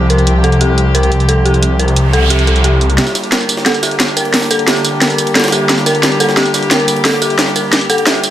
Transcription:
Already playing: detuned saw bass C2, string section F3 G3 C4 G4
0.10 synth bell A#4, closed hi-hat
0.18 closed hi-hat
0.27 closed hi-hat
0.44 synth bell A4, closed hi-hat
0.52 closed hi-hat
0.61 synth bell G4, closed hi-hat
0.78 closed hi-hat
0.95 synth bell A#4, closed hi-hat
1.03 closed hi-hat
1.12 closed hi-hat
1.20 closed hi-hat
1.29 synth bell A4, closed hi-hat
1.46 synth bell G4, closed hi-hat
1.54 closed hi-hat
1.63 closed hi-hat, noise sweep
1.79 synth bell A#4, closed hi-hat
1.88 closed hi-hat
1.96 closed hi-hat
2.13 synth bell A4, closed hi-hat
2.30 synth bell G4, closed hi-hat
2.39 closed hi-hat
2.47 synth bell A4, closed hi-hat
2.56 closed hi-hat
2.64 synth bell G4, closed hi-hat
2.81 closed hi-hat
2.90 closed hi-hat
2.98 string section D3 G3 A#3 G4, synth bell G4, snare, closed hi-hat, ride
3.07 snare, tambourine
3.15 snare, closed hi-hat, ride, tambourine
3.24 closed hi-hat
3.32 synth bell A#4, snare, closed hi-hat, ride
3.41 tambourine
3.49 closed hi-hat, ride, tambourine
3.57 snare
3.66 synth bell A4, snare, closed hi-hat, ride
3.74 closed hi-hat, tambourine
3.83 synth bell G4, snare, closed hi-hat, ride, tambourine
3.91 closed hi-hat
4.00 snare, closed hi-hat, ride
4.08 tambourine
4.17 synth bell A#4, closed hi-hat, ride, tambourine
4.25 ride
4.34 snare, closed hi-hat, open hi-hat
4.42 snare, tambourine
4.51 synth bell A4, closed hi-hat, ride, tambourine
4.59 closed hi-hat
4.68 synth bell G4, snare, closed hi-hat, ride
4.76 snare, tambourine
4.85 closed hi-hat, ride, tambourine
5.01 synth bell A#4, snare, closed hi-hat, ride
5.10 closed hi-hat, tambourine
5.18 closed hi-hat, ride, tambourine
5.27 closed hi-hat, ride
5.35 synth bell A4, snare, closed hi-hat, ride
5.40 snare, ride
5.44 snare, ride, tambourine
5.48 snare, ride
5.52 synth bell G4, snare, closed hi-hat, ride, tambourine
5.69 snare, closed hi-hat, ride
5.78 snare, tambourine
5.86 synth bell A#4, snare, closed hi-hat, ride, tambourine
5.95 closed hi-hat
6.03 snare, closed hi-hat, ride
6.12 tambourine
6.20 synth bell A4, closed hi-hat, ride, tambourine
6.29 snare
6.37 synth bell G4, snare, closed hi-hat, ride
6.46 closed hi-hat, tambourine
6.54 snare, closed hi-hat, ride, tambourine
6.63 closed hi-hat
6.71 synth bell A#4, snare, closed hi-hat, ride
6.80 tambourine
6.88 closed hi-hat, ride, tambourine
6.96 ride
7.05 synth bell A4, snare, closed hi-hat, open hi-hat
7.13 snare, tambourine
7.22 synth bell G4, closed hi-hat, ride, tambourine
7.30 closed hi-hat
7.39 snare, closed hi-hat, ride
7.47 snare, tambourine
7.56 synth bell A#4, closed hi-hat, ride, tambourine
7.73 snare, closed hi-hat, ride
7.81 closed hi-hat, tambourine
7.90 synth bell A4, closed hi-hat, ride, tambourine
7.98 closed hi-hat, ride
8.07 synth bell G4, snare, closed hi-hat, ride
8.15 tambourine
8.24 closed hi-hat, ride, tambourine

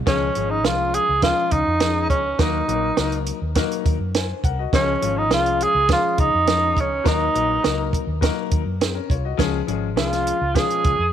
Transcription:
0.06 fingered electric bass C#2, grand piano F3 G#3 C#4 G#4, tenor saxophone C#4, kick, snare, closed hi-hat
0.35 fingered electric bass G#1, grand piano F3 G#3 C#4 G#4, closed hi-hat
0.50 tenor saxophone D#4
0.64 fingered electric bass C2, grand piano F3 G#3 C#4 F4, tenor saxophone F4, snare, closed hi-hat
0.94 tenor saxophone G#4, closed hi-hat
1.09 fingered electric bass C#2
1.22 grand piano F3 G#3 C#4 G#4, tenor saxophone F4, kick, snare, closed hi-hat
1.51 fingered electric bass C#2, tenor saxophone D#4, kick, closed hi-hat
1.67 fingered electric bass F2
1.80 grand piano F3 G#3 C#4 G#4, snare, closed hi-hat
2.10 fingered electric bass C#2, tenor saxophone C#4, kick, closed hi-hat
2.38 fingered electric bass D#2, grand piano F#3 A#3 D#4 A#4, tenor saxophone D#4, kick, snare, closed hi-hat
2.68 fingered electric bass A#1, grand piano F#3 A#3 D#4 A#4, closed hi-hat
2.97 fingered electric bass C#2, grand piano F#3 A#3 D#4 A#4, snare, closed hi-hat
3.12 closed hi-hat
3.26 closed hi-hat
3.42 fingered electric bass D#2
3.55 grand piano F#3 A#3 D#4 A#4, kick, snare, closed hi-hat
3.71 closed hi-hat
3.86 fingered electric bass D#2, kick, closed hi-hat
4.00 fingered electric bass F#2
4.14 grand piano C5 G#5, snare, closed hi-hat
4.44 fingered electric bass C2, grand piano A#4 F#5, kick, closed hi-hat
4.59 grand piano F#4 D#5
4.73 fingered electric bass C#2, grand piano F3 G#3 C#4 G#4, tenor saxophone C#4, kick, snare, closed hi-hat
5.01 fingered electric bass G#1, grand piano F3 G#3 C#4 F4, closed hi-hat
5.18 tenor saxophone D#4
5.30 fingered electric bass C2, grand piano F3 G#3 C#4 G#4, tenor saxophone F4, snare, closed hi-hat
5.46 closed hi-hat
5.61 tenor saxophone G#4, closed hi-hat
5.75 fingered electric bass C#2
5.89 grand piano F3 G#3 C#4 G#4, tenor saxophone F4, kick, snare, closed hi-hat
6.18 fingered electric bass C#2, tenor saxophone D#4, kick, closed hi-hat
6.34 fingered electric bass F2
6.46 grand piano F3 G#3 C#4 G#4, snare, closed hi-hat
6.77 fingered electric bass C#2, tenor saxophone C#4, kick, closed hi-hat
7.04 fingered electric bass D#2, grand piano F#3 A#3 D#4 A#4, tenor saxophone D#4, kick, snare, closed hi-hat
7.34 fingered electric bass A#1, grand piano F#3 A#3 D#4 A#4, closed hi-hat
7.63 fingered electric bass C#2, grand piano F#3 A#3 D#4 A#4, snare, closed hi-hat
7.93 kick, closed hi-hat
8.07 fingered electric bass D#2
8.21 grand piano F#3 A#3 D#4 A#4, kick, snare, closed hi-hat
8.51 fingered electric bass D#2, kick, closed hi-hat
8.66 fingered electric bass F#2
8.81 grand piano C4 G#4, snare, closed hi-hat
8.95 grand piano C#4 A#4
9.10 fingered electric bass C2, grand piano F4 C#5, kick, closed hi-hat
9.25 grand piano F#4 D#5
9.37 fingered electric bass C#2, grand piano F3 G#3 C#4 G#4, kick, snare, closed hi-hat
9.67 fingered electric bass G#1, grand piano F3 G#3 C#4 G#4, closed hi-hat
9.96 fingered electric bass C2, grand piano F3 G#3 C#4 G#4, tenor saxophone F4, snare, closed hi-hat
10.13 snare, closed hi-hat
10.27 closed hi-hat
10.41 fingered electric bass C#2
10.55 grand piano F3 G#3 C#4 F4, tenor saxophone G#4, kick, snare, closed hi-hat
10.70 closed hi-hat
10.84 fingered electric bass C#2, kick, closed hi-hat
10.99 fingered electric bass F2

